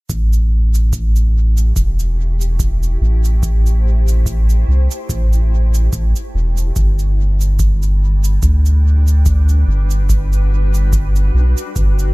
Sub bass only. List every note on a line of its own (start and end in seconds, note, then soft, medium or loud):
0.10 1.73 A1 medium
1.76 2.98 E1 medium
3.01 4.64 A1 loud
4.68 4.88 C2 medium
5.10 5.89 A1 medium
5.93 6.13 A1 medium
6.34 6.72 E1 medium
6.76 8.39 G1 medium
8.43 9.64 D2 medium
9.68 11.31 G1 loud
11.34 11.55 B1 medium
11.76 12.14 G1 medium